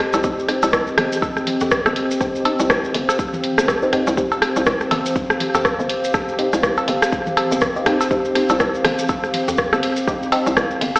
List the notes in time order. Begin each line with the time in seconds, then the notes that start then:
Already playing: C4 G4 C5 D#5
0.13 C2, cowbell, maracas
0.23 C4 D#4 G4, kick, maracas
0.39 maracas
0.48 C4 D#4 G4, cross-stick, open hi-hat
0.63 C2, cowbell, maracas
0.73 C2, kick, cross-stick, maracas
0.87 maracas
0.98 G1, cross-stick, open hi-hat, high tom
1.12 maracas
1.22 kick, cowbell, maracas
1.37 cross-stick, maracas
1.47 open hi-hat, high tom
1.60 F2, mid tom, maracas
1.71 kick, cross-stick, maracas
1.86 G1, cross-stick, cowbell, maracas
1.96 open hi-hat
2.11 maracas
2.21 C4 D#4 G4, kick, cross-stick, maracas
2.35 maracas
2.45 C4 D#4 G4, open hi-hat, cowbell
2.57 C2 F5, maracas
2.70 C2, kick, cross-stick, maracas
2.84 maracas
2.94 G1, open hi-hat
3.09 cross-stick, cowbell, maracas
3.19 kick, maracas
3.33 high tom, maracas
3.44 open hi-hat
3.58 G1, cross-stick, maracas
3.68 kick, cross-stick, cowbell, maracas
3.82 C4 D#4 G4, maracas
3.93 C4 D#4 G4, cross-stick, mid tom, open hi-hat
4.07 C2, maracas
4.17 C4 D#4 G4, kick, maracas
4.32 cowbell, maracas
4.42 cross-stick, open hi-hat
4.56 C2, maracas
4.66 C2, kick, cross-stick, maracas
4.81 cross-stick, maracas
4.91 G1, open hi-hat, high tom, cowbell
5.06 maracas
5.16 kick, maracas
5.30 cross-stick, maracas
5.40 open hi-hat, high tom
5.54 F2, mid tom, cowbell, maracas
5.65 kick, cross-stick, maracas
5.79 G1, maracas
5.89 open hi-hat
6.04 maracas
6.14 kick, cross-stick, cowbell, maracas
6.28 maracas
6.39 C4 D#4 G4, open hi-hat
6.53 C2, cross-stick, maracas
6.63 C2, kick, cross-stick, maracas
6.77 cowbell, maracas
6.88 G1, open hi-hat
7.02 cross-stick, maracas
7.12 kick, maracas
7.27 high tom, maracas
7.37 cross-stick, open hi-hat, cowbell
7.51 G1, maracas
7.61 kick, cross-stick, maracas
7.76 C4 D#4 G4, maracas
7.86 A#1 C4 D#4 G4, cross-stick, mid tom, open hi-hat
8.01 cowbell, maracas
8.11 C4 D#4 G4, kick, maracas
8.25 maracas
8.35 C4 D#4 G4, cross-stick, open hi-hat, ride
8.49 C2, cowbell, maracas
8.60 C2, kick, cross-stick, maracas
8.74 maracas
8.85 G1, cross-stick, open hi-hat, high tom, ride
8.99 maracas
9.09 kick, cowbell, maracas
9.24 cross-stick, maracas
9.34 open hi-hat, high tom, ride
9.48 F2, mid tom, maracas
9.58 kick, cross-stick, maracas
9.73 G1, cross-stick, cowbell, maracas
9.83 open hi-hat, ride
9.96 maracas
10.07 C4 D#4 G4, kick, cross-stick, maracas
10.23 maracas
10.32 C4 D#4 G4, open hi-hat, ride, cowbell
10.46 C2, maracas
10.57 C2, kick, cross-stick, maracas
10.71 maracas
10.81 G1, open hi-hat, ride
10.96 cross-stick, ride, cowbell, maracas